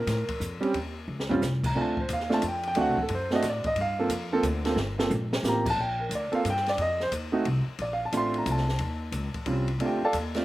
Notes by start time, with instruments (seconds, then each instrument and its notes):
Already playing: grand piano A#4
0.07 upright bass A2, snare, hi-hat pedal, ride
0.28 muted upright bass stroke, kick, ride
0.40 upright bass F2, hi-hat pedal
0.61 grand piano G3 C4 C#4 G4, muted upright bass stroke, ride
0.74 upright bass D#2, ride
1.08 upright bass C#2
1.20 snare
1.29 grand piano G3 C4 C#4 F4, floor tom
1.42 upright bass C2, snare, hi-hat pedal
1.64 grand piano A#5, kick, crash
1.75 upright bass D2, grand piano A3 C4 D4 F4 G#5
1.81 grand piano A5
1.97 grand piano C5, kick
2.09 upright bass D#2, hi-hat pedal, ride
2.13 grand piano F5
2.20 snare
2.30 grand piano A3 C4 D4 F4 A5, snare
2.42 upright bass F2, hi-hat pedal, ride
2.48 grand piano G5
2.63 ride
2.68 grand piano G5
2.75 upright bass D2, grand piano A3 C4 D4 F#4, ride
2.81 grand piano F#5
2.88 upright bass C2
2.97 upright bass A1, kick
3.02 grand piano A4
3.08 upright bass F#2, ride
3.15 grand piano C5
3.31 grand piano A3 C4 D4 F#4, snare
3.35 grand piano D#5
3.42 upright bass A2, snare, hi-hat pedal, ride
3.50 grand piano D5
3.64 grand piano D#5, muted upright bass stroke, kick, ride
3.76 upright bass G2, ride
3.81 grand piano F5
3.99 grand piano A#3 C4 F4 A4
4.09 upright bass F2, hi-hat pedal, ride
4.32 grand piano A#3 C4 F4 A4
4.43 upright bass D2, hi-hat pedal, ride
4.65 grand piano A#3 C4 F4 A4, snare, ride
4.76 upright bass G1, snare
4.98 grand piano A#3 C4 F4 A4, snare
5.10 upright bass A#1, hi-hat pedal, high tom
5.33 snare
5.43 upright bass A1, grand piano A#3 C4 F4 G4, snare, hi-hat pedal
5.48 grand piano A#5
5.66 kick, crash
5.70 grand piano A5
5.76 upright bass A#1
5.81 grand piano G5
6.00 grand piano A#4
6.09 upright bass D2, hi-hat pedal, ride
6.15 grand piano D5
6.32 grand piano A#3 C4 F4 A4 F5, muted upright bass stroke, ride
6.44 upright bass G2, hi-hat pedal, ride
6.50 grand piano G5
6.56 snare
6.66 grand piano D5, snare, ride
6.77 upright bass F2, ride
6.82 grand piano D#5
7.00 grand piano C5, snare
7.11 upright bass D#2, hi-hat pedal, ride
7.32 grand piano A3 C4 D#4 F#4
7.45 upright bass C2, ride
7.67 muted upright bass stroke
7.78 upright bass A#1, grand piano D5, ride
7.93 grand piano F5
8.05 grand piano A5
8.12 upright bass A1, grand piano A3 C4 D4 F4, hi-hat pedal, ride
8.17 grand piano C6
8.34 ride
8.38 grand piano A#5
8.46 upright bass C2, hi-hat pedal, ride
8.51 grand piano A5
8.57 snare
8.69 snare
8.79 upright bass D#2, ride
9.12 upright bass C#2, hi-hat pedal, ride
9.34 kick, ride
9.46 upright bass C2, grand piano G3 C4 C#4 F4, ride
9.68 ride
9.79 upright bass D2, grand piano A3 C4 D4 F4, ride
9.86 grand piano G4 G5
10.01 grand piano A4 D5 F5 A5, muted upright bass stroke
10.13 upright bass D#2, hi-hat pedal, ride
10.34 grand piano A3 C4 D4 F4, snare, ride